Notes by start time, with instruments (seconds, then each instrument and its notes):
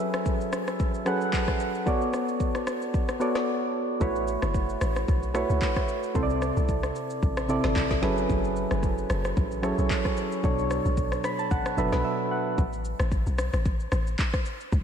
Already playing: synth keys F#3 C#4 G#4 A4 B4 E5
0.14 cross-stick, shaker
0.26 kick, shaker
0.41 shaker
0.53 cross-stick, shaker
0.67 cross-stick, shaker
0.80 kick, shaker
0.94 shaker
1.05 synth keys F#3 C#4 G#4 A4 B4 F#5, cross-stick, shaker
1.21 shaker
1.33 kick, clap, shaker
1.48 kick, cross-stick, shaker
1.60 shaker
1.75 shaker
1.86 synth keys B3 F#4 A4 C#5 D5, kick, shaker
2.01 shaker
2.13 cross-stick, shaker
2.28 shaker
2.40 kick, shaker
2.55 cross-stick, shaker
2.67 cross-stick, shaker
2.82 shaker
2.94 kick, shaker
3.09 cross-stick, shaker
3.20 synth keys B3 F#4 A4 C#5 D5, shaker
3.35 cross-stick, snare, shaker
4.00 log drum bass A1, synth keys A3 E4 F#4 B4 C#5, kick, shaker
4.16 shaker
4.28 shaker
4.42 log drum bass F#1, cross-stick, shaker
4.54 kick, shaker
4.69 shaker
4.81 log drum bass A1, cross-stick, shaker
4.96 cross-stick, shaker
5.08 log drum bass B1, kick, shaker
5.23 shaker
5.34 synth keys A3 E4 F#4 B4 C#5, cross-stick, shaker
5.50 log drum bass C#2, shaker
5.62 kick, clap, shaker
5.76 kick, cross-stick, shaker
5.88 shaker
6.03 shaker
6.14 log drum bass C2, synth keys C3 C4 E4 A4 C5, kick, shaker
6.23 synth keys D5
6.30 shaker
6.42 cross-stick, shaker
6.57 log drum bass C2, shaker
6.69 kick, shaker
6.83 cross-stick, shaker
6.96 shaker
7.10 shaker
7.22 log drum bass A1, kick, shaker
7.37 cross-stick, shaker
7.48 synth keys C3 C4 E4 A4 D5, shaker
7.64 log drum bass G1, cross-stick, snare, shaker
7.76 log drum bass A1, kick, clap, shaker
7.91 kick, snare, shaker
8.02 log drum bass F#1, synth keys F#3 C#4 E4 G#4 A4 B4, snare, shaker
8.17 shaker
8.30 log drum bass F#1, kick, shaker
8.44 shaker
8.56 shaker
8.71 log drum bass F#1, cross-stick, shaker
8.83 kick, shaker
8.98 shaker
9.10 log drum bass F#1, cross-stick, shaker
9.25 cross-stick, shaker
9.37 log drum bass A1, kick, shaker
9.51 shaker
9.62 synth keys F#3 C#4 E4 G#4 A4 C#5, cross-stick, shaker
9.78 log drum bass B1, shaker
9.90 kick, clap, shaker
10.05 kick, cross-stick, shaker
10.17 shaker
10.32 shaker
10.43 log drum bass B1, synth keys B2 F#3 D4 A4 C#5, kick, shaker
10.59 shaker
10.71 cross-stick, shaker
10.85 log drum bass B1, shaker
10.97 kick, shaker
11.12 cross-stick, shaker
11.24 synth keys B5, cross-stick, shaker
11.39 synth keys A5, shaker
11.51 log drum bass A1, synth keys F#5, kick, shaker
11.66 cross-stick, shaker
11.77 log drum bass F#1, synth keys B2 F#3 D4 A4 B4 E5, shaker
11.93 log drum bass B1, cross-stick, snare, shaker
12.05 synth keys E5
12.31 synth keys F#5
12.58 log drum bass A1, kick, shaker
12.73 shaker
12.85 shaker
13.00 log drum bass A1, cross-stick, shaker
13.12 kick, shaker
13.26 log drum bass B1, shaker
13.38 cross-stick, shaker
13.53 log drum bass A1, cross-stick, shaker
13.65 kick, shaker
13.80 shaker
13.92 log drum bass A1, cross-stick, shaker
14.07 shaker
14.19 kick, clap, shaker
14.34 kick, cross-stick, shaker
14.45 shaker
14.60 shaker
14.72 log drum bass C2, kick, shaker